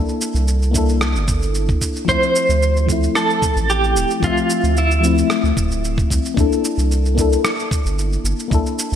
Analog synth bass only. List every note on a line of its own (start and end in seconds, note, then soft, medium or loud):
0.34 1.17 C2 loud
1.15 1.75 G1 medium
2.08 2.18 D2 medium
2.49 3.09 D2 medium
3.56 3.97 A1 medium
3.96 4.05 D1 medium
4.23 4.32 D2 medium
4.64 5.23 D2 medium
5.44 5.52 D2 medium
5.57 6.03 D1 medium
6.11 6.20 C2 medium
6.37 6.46 C2 medium
6.78 7.37 C2 medium
7.85 8.18 G1 medium
8.24 8.34 G1 medium
8.51 8.61 C2 loud
8.92 8.96 C2 loud